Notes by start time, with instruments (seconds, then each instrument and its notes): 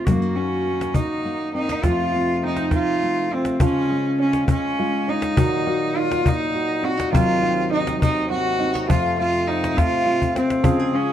0.05 nylon-string guitar F#2 G#3, harmonium F#2 D#3 A#3 F#4, cello A#3, clarinet F#4, cajon bass
0.22 nylon-string guitar A#3
0.35 cello C#4, nylon-string guitar F#4
0.67 nylon-string guitar D#4
0.81 cajon slap
0.94 cello D#4, muted nylon-string guitar stroke, cajon bass
1.25 nylon-string guitar A#3, cajon slap
1.54 nylon-string guitar C4, cello D#4
1.69 nylon-string guitar D#4, cajon slap
1.81 nylon-string guitar F2, harmonium C3 A3 F4, clarinet F4, cello F4, cajon bass, cajon slap
1.85 nylon-string guitar F3 A3 C4
2.14 nylon-string guitar C4
2.43 nylon-string guitar C4, clarinet D#4, cello D#4
2.57 cajon slap
2.71 cello F4, muted nylon-string guitar stroke, cajon bass, cajon slap
3.03 nylon-string guitar A3
3.31 nylon-string guitar C4, cello C4, clarinet F4, cajon slap
3.45 cajon slap
3.60 harmonium C#3 G#3 F4, nylon-string guitar C#3 F4, five-string banjo F3 F4, cajon bass
3.64 cello C#4
3.75 cajon slap
3.90 five-string banjo G#3, nylon-string guitar C#4
4.19 five-string banjo C#4, cello C#4
4.33 cajon slap
4.48 five-string banjo G#3, cello C#4, muted nylon-string guitar stroke, cajon bass
4.79 nylon-string guitar G#3, five-string banjo F4
5.08 five-string banjo C#4, nylon-string guitar C#4, cello D#4
5.22 cajon slap
5.36 harmonium A#2 F#3 D#4, nylon-string guitar D#3 F#4, five-string banjo F#3 F#4, cajon bass
5.67 five-string banjo A#3, nylon-string guitar F#4
5.96 five-string banjo D#4, cello F4
6.11 cajon slap
6.24 five-string banjo A#3, cello D#4, muted nylon-string guitar stroke, cajon bass
6.55 nylon-string guitar D#4, five-string banjo F#4
6.82 nylon-string guitar C4, five-string banjo D#4, cello F#4
6.97 nylon-string guitar D#4, cajon slap
7.12 harmonium D#2 C3, nylon-string guitar D#3 F#3 C4 D#4, five-string banjo F#3, cello F4, cajon bass
7.42 five-string banjo C4, nylon-string guitar D#4
7.71 five-string banjo D#4, cello D#4
7.87 cajon slap
8.01 five-string banjo C4, cello D#4, muted nylon-string guitar stroke, cajon bass
8.30 nylon-string guitar C4, five-string banjo F#4, cello F#4
8.58 nylon-string guitar C4, five-string banjo D#4
8.74 nylon-string guitar D#4, cajon slap
8.89 nylon-string guitar F2 C4, five-string banjo F3 F4, harmonium A3 F4, cello F4, cajon bass
9.18 five-string banjo A3, nylon-string guitar C4, cello F4, cajon slap
9.47 five-string banjo C4, cello D#4, cajon slap
9.64 cajon slap
9.77 five-string banjo A3, cello F4, muted nylon-string guitar stroke, cajon bass, cajon slap
9.94 cajon slap
10.06 nylon-string guitar C4, five-string banjo F4, cajon slap
10.22 cajon bass
10.35 five-string banjo C4, cello C4, nylon-string guitar F4, cajon slap
10.50 cajon slap
10.63 harmonium C#3 G#3 F4, nylon-string guitar C#3 F4, five-string banjo F3 F4, clarinet G#4, cajon bass
10.80 nylon-string guitar G#4
10.93 five-string banjo G#3, cello C#4, nylon-string guitar F4